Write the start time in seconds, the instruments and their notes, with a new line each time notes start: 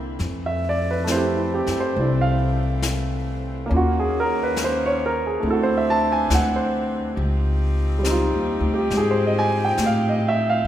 Already playing: upright bass C2, saxophone section D3 A#3 C4 E4, grand piano A#3 D4 E4 G4 A#4 E5
0.19 upright bass F2, saxophone section E3 A3 C4, brush sweep, snare
0.46 grand piano E5
0.69 grand piano D5
0.91 grand piano B4
1.04 grand piano A3, snare, hi-hat pedal
1.08 grand piano C4 E4 C5
1.16 grand piano G4
1.36 grand piano E4
1.54 grand piano G4
1.66 upright bass F#2, snare
1.80 grand piano C5
1.96 upright bass C2, grand piano C4 D4 E4, brush sweep
2.01 grand piano D5
2.21 grand piano F5
2.82 snare, hi-hat pedal
3.66 saxophone section D#3 A#3 C#4, grand piano A#3 C#4
3.70 upright bass D#2, grand piano F4, brush sweep
3.77 grand piano F#4
4.00 grand piano G#4
4.20 grand piano A#4
4.43 grand piano B4
4.56 snare, hi-hat pedal
4.64 grand piano C5
4.86 grand piano C#5
5.06 grand piano A#4
5.27 grand piano G#4
5.40 upright bass D2, saxophone section E3 C4 D4, grand piano A3, brush sweep
5.44 grand piano C4 E4
5.50 grand piano F#4 A4
5.63 grand piano C5
5.77 grand piano E5
5.90 grand piano A5
6.12 grand piano G#5
6.30 upright bass D2, snare, hi-hat pedal
6.34 grand piano F#5
6.56 grand piano C5
7.14 upright bass C#2, saxophone section F3 C4 D#4 G4, brush sweep
7.99 grand piano G3
8.03 grand piano C4 D#4, snare, hi-hat pedal
8.11 grand piano F4
8.33 upright bass D#2
8.60 upright bass D2
8.74 grand piano G4
8.90 upright bass G#2, brush sweep, snare
8.97 grand piano G#4
9.11 grand piano C5
9.27 grand piano D#5
9.39 grand piano G#5
9.65 grand piano G5
9.78 upright bass A2, snare, hi-hat pedal
9.86 grand piano F5
10.09 grand piano D#5
10.29 grand piano E5
10.50 grand piano F5